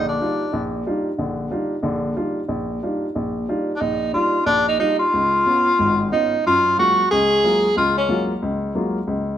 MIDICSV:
0, 0, Header, 1, 3, 480
1, 0, Start_track
1, 0, Key_signature, -3, "major"
1, 0, Tempo, 328767
1, 1733, Time_signature, 4, 2, 24, 8
1, 13693, End_track
2, 0, Start_track
2, 0, Title_t, "Tenor saxophone"
2, 0, Program_c, 0, 66
2, 122, Note_on_c, 0, 62, 67
2, 1018, Note_off_c, 0, 62, 0
2, 5491, Note_on_c, 0, 62, 63
2, 5563, Note_on_c, 0, 63, 80
2, 5585, Note_off_c, 0, 62, 0
2, 6037, Note_off_c, 0, 63, 0
2, 6046, Note_on_c, 0, 65, 82
2, 6495, Note_off_c, 0, 65, 0
2, 6515, Note_on_c, 0, 62, 101
2, 6802, Note_off_c, 0, 62, 0
2, 6834, Note_on_c, 0, 63, 81
2, 6993, Note_off_c, 0, 63, 0
2, 7002, Note_on_c, 0, 63, 80
2, 7281, Note_off_c, 0, 63, 0
2, 7290, Note_on_c, 0, 65, 90
2, 8865, Note_off_c, 0, 65, 0
2, 8945, Note_on_c, 0, 63, 77
2, 9387, Note_off_c, 0, 63, 0
2, 9444, Note_on_c, 0, 65, 94
2, 9877, Note_off_c, 0, 65, 0
2, 9917, Note_on_c, 0, 66, 91
2, 10354, Note_off_c, 0, 66, 0
2, 10384, Note_on_c, 0, 68, 123
2, 11282, Note_off_c, 0, 68, 0
2, 11352, Note_on_c, 0, 65, 89
2, 11624, Note_off_c, 0, 65, 0
2, 11648, Note_on_c, 0, 61, 67
2, 12089, Note_off_c, 0, 61, 0
2, 13693, End_track
3, 0, Start_track
3, 0, Title_t, "Grand piano"
3, 0, Program_c, 1, 0
3, 0, Note_on_c, 1, 34, 65
3, 0, Note_on_c, 1, 50, 56
3, 237, Note_off_c, 1, 50, 0
3, 238, Note_off_c, 1, 34, 0
3, 305, Note_on_c, 1, 55, 42
3, 312, Note_on_c, 1, 62, 40
3, 314, Note_on_c, 1, 63, 42
3, 316, Note_on_c, 1, 65, 50
3, 617, Note_off_c, 1, 55, 0
3, 621, Note_off_c, 1, 62, 0
3, 622, Note_off_c, 1, 63, 0
3, 623, Note_off_c, 1, 65, 0
3, 775, Note_on_c, 1, 34, 63
3, 1187, Note_off_c, 1, 34, 0
3, 1260, Note_on_c, 1, 55, 48
3, 1265, Note_on_c, 1, 62, 37
3, 1270, Note_on_c, 1, 65, 48
3, 1274, Note_on_c, 1, 63, 44
3, 1574, Note_off_c, 1, 55, 0
3, 1577, Note_off_c, 1, 62, 0
3, 1579, Note_off_c, 1, 65, 0
3, 1581, Note_off_c, 1, 63, 0
3, 1729, Note_on_c, 1, 50, 59
3, 1732, Note_on_c, 1, 34, 52
3, 2143, Note_off_c, 1, 50, 0
3, 2145, Note_off_c, 1, 34, 0
3, 2198, Note_on_c, 1, 55, 44
3, 2211, Note_on_c, 1, 65, 52
3, 2213, Note_on_c, 1, 62, 41
3, 2217, Note_on_c, 1, 63, 42
3, 2523, Note_off_c, 1, 55, 0
3, 2529, Note_off_c, 1, 65, 0
3, 2530, Note_off_c, 1, 62, 0
3, 2532, Note_off_c, 1, 63, 0
3, 2667, Note_on_c, 1, 34, 60
3, 2680, Note_on_c, 1, 50, 62
3, 3091, Note_off_c, 1, 34, 0
3, 3098, Note_off_c, 1, 50, 0
3, 3157, Note_on_c, 1, 63, 37
3, 3158, Note_on_c, 1, 62, 38
3, 3159, Note_on_c, 1, 55, 44
3, 3165, Note_on_c, 1, 65, 56
3, 3482, Note_off_c, 1, 63, 0
3, 3483, Note_off_c, 1, 55, 0
3, 3483, Note_off_c, 1, 62, 0
3, 3486, Note_off_c, 1, 65, 0
3, 3627, Note_on_c, 1, 34, 60
3, 4051, Note_off_c, 1, 34, 0
3, 4128, Note_on_c, 1, 55, 43
3, 4130, Note_on_c, 1, 62, 43
3, 4139, Note_on_c, 1, 63, 38
3, 4142, Note_on_c, 1, 65, 50
3, 4447, Note_off_c, 1, 55, 0
3, 4448, Note_off_c, 1, 62, 0
3, 4453, Note_off_c, 1, 63, 0
3, 4455, Note_off_c, 1, 65, 0
3, 4606, Note_on_c, 1, 34, 62
3, 5021, Note_off_c, 1, 34, 0
3, 5090, Note_on_c, 1, 55, 46
3, 5090, Note_on_c, 1, 62, 37
3, 5098, Note_on_c, 1, 63, 40
3, 5099, Note_on_c, 1, 65, 57
3, 5408, Note_off_c, 1, 55, 0
3, 5409, Note_off_c, 1, 62, 0
3, 5412, Note_off_c, 1, 63, 0
3, 5413, Note_off_c, 1, 65, 0
3, 5562, Note_on_c, 1, 34, 57
3, 5979, Note_off_c, 1, 34, 0
3, 6035, Note_on_c, 1, 62, 44
3, 6036, Note_on_c, 1, 55, 46
3, 6037, Note_on_c, 1, 63, 39
3, 6041, Note_on_c, 1, 65, 50
3, 6362, Note_off_c, 1, 55, 0
3, 6362, Note_off_c, 1, 62, 0
3, 6363, Note_off_c, 1, 63, 0
3, 6365, Note_off_c, 1, 65, 0
3, 6511, Note_on_c, 1, 34, 64
3, 6934, Note_off_c, 1, 34, 0
3, 6991, Note_on_c, 1, 55, 49
3, 6997, Note_on_c, 1, 63, 42
3, 7003, Note_on_c, 1, 62, 44
3, 7009, Note_on_c, 1, 65, 50
3, 7320, Note_off_c, 1, 55, 0
3, 7324, Note_off_c, 1, 63, 0
3, 7326, Note_off_c, 1, 62, 0
3, 7330, Note_off_c, 1, 65, 0
3, 7495, Note_on_c, 1, 37, 57
3, 7908, Note_off_c, 1, 37, 0
3, 7972, Note_on_c, 1, 59, 45
3, 7984, Note_on_c, 1, 61, 44
3, 7987, Note_on_c, 1, 65, 49
3, 8291, Note_off_c, 1, 59, 0
3, 8298, Note_off_c, 1, 61, 0
3, 8299, Note_off_c, 1, 65, 0
3, 8453, Note_on_c, 1, 44, 62
3, 8466, Note_on_c, 1, 32, 59
3, 8867, Note_off_c, 1, 44, 0
3, 8874, Note_off_c, 1, 32, 0
3, 8926, Note_on_c, 1, 59, 43
3, 8940, Note_on_c, 1, 61, 40
3, 8942, Note_on_c, 1, 65, 49
3, 9249, Note_off_c, 1, 59, 0
3, 9256, Note_off_c, 1, 61, 0
3, 9257, Note_off_c, 1, 65, 0
3, 9435, Note_on_c, 1, 42, 64
3, 9839, Note_off_c, 1, 42, 0
3, 9895, Note_on_c, 1, 54, 49
3, 9907, Note_on_c, 1, 65, 60
3, 9908, Note_on_c, 1, 58, 42
3, 9918, Note_on_c, 1, 56, 45
3, 10214, Note_off_c, 1, 54, 0
3, 10220, Note_off_c, 1, 58, 0
3, 10220, Note_off_c, 1, 65, 0
3, 10225, Note_off_c, 1, 56, 0
3, 10395, Note_on_c, 1, 37, 69
3, 10799, Note_off_c, 1, 37, 0
3, 10864, Note_on_c, 1, 54, 45
3, 10864, Note_on_c, 1, 58, 50
3, 10872, Note_on_c, 1, 56, 47
3, 10880, Note_on_c, 1, 65, 55
3, 11178, Note_off_c, 1, 54, 0
3, 11178, Note_off_c, 1, 58, 0
3, 11182, Note_off_c, 1, 56, 0
3, 11186, Note_off_c, 1, 65, 0
3, 11334, Note_on_c, 1, 37, 65
3, 11748, Note_off_c, 1, 37, 0
3, 11808, Note_on_c, 1, 56, 47
3, 11809, Note_on_c, 1, 54, 51
3, 11809, Note_on_c, 1, 58, 45
3, 11823, Note_on_c, 1, 65, 63
3, 12130, Note_off_c, 1, 56, 0
3, 12131, Note_off_c, 1, 54, 0
3, 12131, Note_off_c, 1, 58, 0
3, 12137, Note_off_c, 1, 65, 0
3, 12297, Note_on_c, 1, 37, 65
3, 12709, Note_off_c, 1, 37, 0
3, 12772, Note_on_c, 1, 58, 48
3, 12777, Note_on_c, 1, 54, 49
3, 12787, Note_on_c, 1, 56, 47
3, 12790, Note_on_c, 1, 65, 52
3, 13092, Note_off_c, 1, 58, 0
3, 13094, Note_off_c, 1, 54, 0
3, 13099, Note_off_c, 1, 56, 0
3, 13101, Note_off_c, 1, 65, 0
3, 13246, Note_on_c, 1, 37, 60
3, 13663, Note_off_c, 1, 37, 0
3, 13693, End_track
0, 0, End_of_file